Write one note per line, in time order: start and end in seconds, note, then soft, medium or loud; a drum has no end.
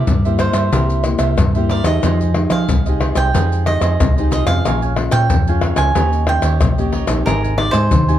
0.00 0.23 A#4 soft
0.00 0.22 C5 medium
0.00 0.36 D5 medium
0.00 0.22 E5 medium
0.07 0.49 G2 medium
0.07 0.70 G2 medium
0.07 pandeiro medium
0.07 maracas medium
0.07 surdo medium
0.25 0.69 A#3 medium
0.25 0.69 E4 medium
0.25 0.69 G4 medium
0.25 0.38 A#4 soft
0.25 0.39 C5 soft
0.25 0.40 E5 soft
0.25 pandeiro soft
0.25 maracas soft
0.38 0.54 E4 soft
0.38 0.55 A#4 medium
0.38 1.67 C5 medium
0.38 0.54 C5 medium
0.38 0.53 E5 medium
0.38 pandeiro medium
0.38 tamborim medium
0.38 maracas medium
0.38 surdo soft
0.53 0.69 G2 medium
0.53 0.72 A#4 medium
0.53 0.71 C5 medium
0.53 0.70 E5 medium
0.53 pandeiro medium
0.53 tamborim medium
0.53 maracas medium
0.72 1.14 C2 medium
0.72 1.36 C3 medium
0.72 1.01 A#3 medium
0.72 1.03 E4 medium
0.72 1.01 E4 medium
0.72 1.01 G4 medium
0.72 1.03 A#4 medium
0.72 1.04 C5 medium
0.72 1.04 E5 medium
0.72 pandeiro medium
0.72 maracas medium
0.72 surdo medium
0.90 pandeiro soft
0.90 maracas soft
1.04 1.36 A#3 medium
1.04 1.36 E4 soft
1.04 1.37 G4 medium
1.04 muted cavaquinho stroke soft
1.04 pandeiro medium
1.04 tamborim medium
1.04 maracas medium
1.19 1.34 C2 medium
1.19 1.53 A#4 medium
1.19 1.53 C5 medium
1.19 1.52 E5 medium
1.19 pandeiro medium
1.19 tamborim medium
1.19 maracas medium
1.38 1.80 G2 medium
1.38 2.01 G2 medium
1.38 pandeiro medium
1.38 tamborim medium
1.38 maracas medium
1.38 surdo loud
1.55 1.83 A#3 medium
1.55 1.83 E4 medium
1.55 1.84 G4 medium
1.55 1.69 A#4 soft
1.55 1.70 C5 soft
1.55 1.70 E5 soft
1.55 pandeiro soft
1.55 maracas soft
1.69 1.85 E4 medium
1.69 1.85 A#4 medium
1.69 1.84 C5 medium
1.69 1.86 D5 medium
1.69 1.83 E5 medium
1.69 pandeiro medium
1.84 2.00 E2 medium
1.84 2.30 G#3 medium
1.84 2.31 D#4 medium
1.84 2.31 G4 medium
1.84 2.02 A#4 soft
1.84 2.51 D#5 medium
1.84 2.01 E5 soft
1.84 pandeiro medium
1.84 tamborim medium
1.84 maracas medium
1.84 surdo soft
2.03 2.45 F2 medium
2.03 2.66 F3 medium
2.03 2.19 F4 medium
2.03 2.19 G#4 medium
2.03 2.19 C5 medium
2.03 2.20 D#5 medium
2.03 pandeiro medium
2.03 tamborim medium
2.03 maracas medium
2.03 surdo medium
2.21 2.35 G#4 soft
2.21 2.34 C5 soft
2.21 2.35 D#5 soft
2.21 pandeiro soft
2.21 maracas soft
2.21 surdo soft
2.34 2.67 G#3 soft
2.34 2.67 D#4 medium
2.34 2.67 G4 medium
2.34 muted cavaquinho stroke soft
2.34 pandeiro medium
2.34 tamborim medium
2.50 2.65 F3 medium
2.50 2.84 G#4 medium
2.50 2.83 C5 medium
2.50 2.83 D#5 medium
2.50 3.14 F5 medium
2.50 pandeiro medium
2.50 tamborim medium
2.50 maracas medium
2.50 surdo soft
2.69 3.11 C2 medium
2.69 3.32 C3 medium
2.69 pandeiro medium
2.69 maracas medium
2.69 surdo medium
2.86 3.31 G#3 medium
2.86 3.31 D#4 medium
2.86 3.31 G4 medium
2.86 3.00 G#4 soft
2.86 3.01 C5 soft
2.86 3.01 D#5 soft
2.86 pandeiro soft
2.86 maracas soft
3.00 3.16 F4 soft
3.00 3.16 G#4 medium
3.00 3.15 C5 soft
3.00 3.14 D#5 medium
3.00 pandeiro medium
3.00 tamborim medium
3.00 surdo soft
3.15 3.31 C2 medium
3.15 3.33 G#4 soft
3.15 3.32 C5 medium
3.15 3.32 D#5 medium
3.15 3.63 G5 medium
3.15 pandeiro medium
3.15 tamborim medium
3.15 maracas medium
3.33 3.77 F2 loud
3.33 3.98 F3 medium
3.33 3.63 G#3 medium
3.33 3.63 D#4 medium
3.33 3.64 F4 medium
3.33 3.63 G4 medium
3.33 3.64 G#4 medium
3.33 3.65 C5 medium
3.33 3.65 D#5 medium
3.33 pandeiro medium
3.33 maracas medium
3.33 surdo medium
3.52 pandeiro soft
3.52 maracas soft
3.65 4.11 G#3 medium
3.65 4.11 D#4 medium
3.65 4.11 G4 medium
3.65 4.31 D#5 medium
3.65 muted cavaquinho stroke soft
3.65 pandeiro medium
3.65 tamborim medium
3.80 3.96 F2 medium
3.80 4.15 G#4 medium
3.80 4.14 C5 medium
3.80 4.13 D#5 medium
3.80 pandeiro medium
3.80 tamborim medium
3.80 maracas medium
4.00 4.42 C2 medium
4.00 4.63 C3 medium
4.00 pandeiro medium
4.00 tamborim medium
4.00 maracas medium
4.00 surdo loud
4.16 4.45 G#3 medium
4.16 4.45 D#4 medium
4.16 4.45 G4 medium
4.16 4.31 G#4 soft
4.16 4.31 C5 soft
4.16 4.32 D#5 medium
4.16 pandeiro soft
4.16 maracas soft
4.31 4.47 F4 medium
4.31 4.47 G#4 medium
4.31 4.46 C5 medium
4.31 4.46 D#5 medium
4.31 4.45 D#5 medium
4.31 pandeiro medium
4.31 maracas medium
4.46 4.62 F2 medium
4.46 4.92 G#3 medium
4.46 4.92 C#4 medium
4.46 4.93 F4 medium
4.46 4.64 G#4 soft
4.46 4.63 C5 soft
4.46 4.63 D#5 medium
4.46 5.09 F5 loud
4.46 pandeiro medium
4.46 tamborim medium
4.46 maracas medium
4.46 surdo soft
4.65 5.08 A#1 medium
4.65 5.28 A#2 medium
4.65 4.80 A#4 medium
4.65 4.81 C#5 medium
4.65 4.81 F5 medium
4.65 4.81 G#5 medium
4.65 pandeiro medium
4.65 tamborim medium
4.65 maracas medium
4.65 surdo medium
4.82 4.97 C#5 soft
4.82 4.97 F5 soft
4.82 4.97 G#5 soft
4.82 pandeiro soft
4.82 maracas soft
4.82 surdo soft
4.96 5.29 G#3 medium
4.96 5.29 C#4 medium
4.96 5.29 F4 medium
4.96 muted cavaquinho stroke soft
4.96 pandeiro medium
4.96 tamborim medium
5.11 5.27 A#2 medium
5.11 5.46 C#5 medium
5.11 5.45 F5 medium
5.11 5.77 G5 loud
5.11 pandeiro medium
5.11 tamborim medium
5.11 maracas medium
5.11 surdo soft
5.30 5.73 F2 medium
5.30 5.93 F2 medium
5.30 pandeiro medium
5.30 maracas medium
5.30 surdo loud
5.47 5.92 G#3 medium
5.47 5.92 C#4 medium
5.47 5.92 F4 medium
5.47 5.62 C#5 soft
5.47 5.63 F5 soft
5.47 5.63 G#5 medium
5.47 pandeiro soft
5.47 maracas soft
5.61 5.78 A#4 soft
5.61 5.78 C#5 medium
5.61 5.77 F5 soft
5.61 5.76 G#5 soft
5.61 pandeiro medium
5.61 tamborim medium
5.61 surdo soft
5.76 5.92 C#2 medium
5.76 5.95 C#5 medium
5.76 5.94 F5 medium
5.76 5.93 G#5 medium
5.76 6.28 G#5 loud
5.76 pandeiro medium
5.76 tamborim medium
5.76 maracas medium
5.95 6.38 D#2 loud
5.95 6.58 D#3 medium
5.95 6.23 A#3 soft
5.95 6.24 C#4 medium
5.95 6.27 D#4 medium
5.95 6.24 G4 medium
5.95 6.28 C#5 medium
5.95 6.28 D#5 medium
5.95 pandeiro medium
5.95 maracas medium
5.95 surdo medium
6.13 pandeiro soft
6.13 maracas soft
6.27 6.72 A#3 medium
6.27 6.72 C#4 soft
6.27 6.73 G4 medium
6.27 6.90 G5 medium
6.27 muted cavaquinho stroke soft
6.27 pandeiro medium
6.27 tamborim medium
6.42 6.58 D#2 medium
6.42 6.77 G4 medium
6.42 6.76 C#5 medium
6.42 6.75 D#5 medium
6.42 pandeiro medium
6.42 tamborim medium
6.42 maracas medium
6.61 7.03 A#1 medium
6.61 7.24 A#2 medium
6.61 pandeiro medium
6.61 tamborim medium
6.61 maracas medium
6.61 surdo loud
6.78 7.06 A#3 medium
6.78 7.06 C#4 medium
6.78 7.06 G4 medium
6.78 6.92 G4 soft
6.78 6.93 C#5 soft
6.78 6.93 D#5 medium
6.78 pandeiro soft
6.78 maracas soft
6.92 7.08 D#4 medium
6.92 7.08 G4 medium
6.92 7.07 C#5 medium
6.92 7.05 D#5 medium
6.92 pandeiro medium
7.07 7.23 A#1 medium
7.07 7.53 C4 medium
7.07 7.53 D#4 medium
7.07 7.54 G4 medium
7.07 7.24 G4 soft
7.07 7.24 C#5 soft
7.07 pandeiro medium
7.07 tamborim medium
7.07 maracas medium
7.07 surdo soft
7.25 7.69 G#1 medium
7.25 7.89 G#3 soft
7.25 7.41 G4 medium
7.25 7.60 A#4 loud
7.25 7.42 C5 medium
7.25 7.42 D#5 medium
7.25 7.42 G#5 medium
7.25 pandeiro medium
7.25 tamborim medium
7.25 maracas medium
7.25 surdo medium
7.43 7.57 C5 soft
7.43 7.58 D#5 soft
7.43 7.58 G#5 soft
7.43 pandeiro soft
7.43 maracas soft
7.43 surdo soft
7.58 8.03 C4 medium
7.58 8.03 D#4 medium
7.58 8.03 G4 medium
7.58 7.76 D5 loud
7.58 muted cavaquinho stroke soft
7.58 pandeiro medium
7.58 tamborim medium
7.71 7.89 G#2 medium
7.71 8.19 C5 loud
7.71 8.06 D#5 medium
7.71 8.06 G#5 medium
7.71 pandeiro medium
7.71 tamborim medium
7.71 maracas medium
7.71 surdo soft
7.75 8.07 C5 medium
7.91 8.19 D#2 medium
7.91 8.19 D#3 medium
7.91 pandeiro medium
7.91 maracas medium
7.91 surdo medium
8.08 8.19 C4 medium
8.08 8.19 D#4 medium
8.08 8.19 G4 medium
8.08 8.19 C5 soft
8.08 8.19 D#5 medium
8.08 8.19 G#5 medium
8.08 pandeiro soft
8.08 maracas soft